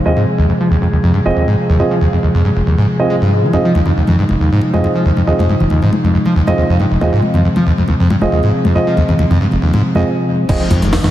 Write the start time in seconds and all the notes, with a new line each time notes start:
Already playing: C3 F3 G#3
0.05 D#2 C4 F4 G#4 D#5
0.17 G#2
0.38 D#2
0.49 F2
0.61 F3
0.71 D#2
0.82 F2
0.92 D#2
1.03 F2
1.14 G2
1.26 F1 C4 F4 G#4 D#5
1.36 D#2
1.47 G#2
1.69 D#2
1.79 F2 C4 F4 G#4 D#5
1.91 F3
2.01 D#2
2.13 F2
2.23 D#2
2.34 F2
2.45 G2
2.56 F1
2.66 D#2
2.78 G#2
2.99 C4 F4 G#4 D#5
3.10 G#3
3.21 G2
3.32 G#2
3.43 F3
3.53 F2 C4 D#4 F4 G#4 D#5, muted conga
3.65 F3
3.75 D#2, muted conga, high conga
3.86 F2, low conga
3.97 D#2
4.07 F2, muted conga, low conga
4.18 G2
4.29 F1, muted conga, high conga
4.40 D#2
4.52 G#2
4.62 muted conga
4.73 F2 C4 F4 G#4 D#5, high conga
4.84 F2, muted conga
4.95 F3
5.05 D#2
5.17 F2, muted conga
5.27 D#2 C4 F4 G#4 D#5
5.39 F2, muted conga
5.49 G2, high conga
5.60 F1, low conga
5.70 D#2, muted conga
5.82 G#2, low conga
5.93 muted conga
6.04 F2, high conga
6.14 F2
6.25 F3, muted conga
6.36 D#2
6.47 F2 C4 F4 G#4 D#5, muted conga, high conga
6.58 D#2
6.69 F2
6.80 G2, muted conga
6.91 F1
7.01 D#2 C4 F4 G#4 D#5, muted conga
7.13 G#2
7.22 high conga
7.34 F2, muted conga, low conga
7.45 F2
7.56 F3, muted conga, low conga
7.67 D#2
7.78 F2, high conga
7.88 D#2, muted conga
8.00 F2
8.10 G2, muted conga
8.21 F1 C4 F4 G#4 D#5, high conga
8.32 D#2
8.43 G#2, muted conga
8.65 F2, muted conga
8.75 F2 C4 F4 G#4 D#5
8.87 F3
8.97 D#2, muted conga, high conga
9.09 F2, low conga
9.19 D#2, muted conga
9.30 F2, low conga
9.41 G2
9.51 F1, muted conga, high conga
9.62 D#2
9.74 G#2, muted conga
9.95 F2 C4 F4 G#4 D#5, high conga
10.49 F1 F2 C3 F3 G#3 C4 D#4 F4 G#4 D#5, kick, closed hi-hat, crash, impact, muted conga
10.60 F3
10.70 D#2 F2, closed hi-hat, muted conga
10.82 F1 F2, closed hi-hat, high conga, low conga
10.93 D#2, snare, open hi-hat
11.04 F2, snare, muted conga, low conga